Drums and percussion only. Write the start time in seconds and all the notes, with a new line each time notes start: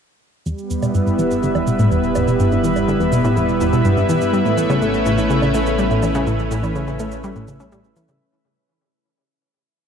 0.46 cabasa
0.58 cabasa
0.70 cabasa
0.83 cabasa, low woodblock
0.95 cabasa
1.07 cabasa
1.19 cabasa
1.31 cabasa
1.43 cabasa
1.55 cabasa, low woodblock
1.67 cabasa
1.79 cabasa
1.91 cabasa
2.03 cabasa
2.15 cabasa, low woodblock
2.28 cabasa
2.40 cabasa
2.52 cabasa
2.64 cabasa
2.76 cabasa, low woodblock
2.88 cabasa
3.00 cabasa
3.12 cabasa
3.24 cabasa
3.37 cabasa
3.49 cabasa
3.61 cabasa
3.73 cabasa
3.85 cabasa
3.97 cabasa
4.09 cabasa
4.21 cabasa
4.33 cabasa
4.46 cabasa
4.58 cabasa
4.70 cabasa, low woodblock
4.82 cabasa
4.94 cabasa
5.06 cabasa
5.18 cabasa
5.30 cabasa
5.42 cabasa, low woodblock
5.54 cabasa
5.66 cabasa
5.78 cabasa
5.91 cabasa
6.03 cabasa, low woodblock
6.15 cabasa
6.27 cabasa
6.39 cabasa
6.51 cabasa
6.63 cabasa, low woodblock
6.75 cabasa
6.88 cabasa
6.99 cabasa
7.12 cabasa
7.24 cabasa
7.36 cabasa
7.48 cabasa
7.60 cabasa
7.72 cabasa
7.84 cabasa
7.96 cabasa
8.08 cabasa